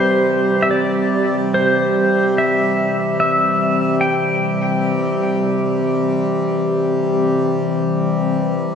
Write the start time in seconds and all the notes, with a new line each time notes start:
Already playing: C3 E3 G3 C4 G4 C5
0.62 E5
0.71 D5
1.54 C5
2.38 E5
3.20 E5
4.01 G5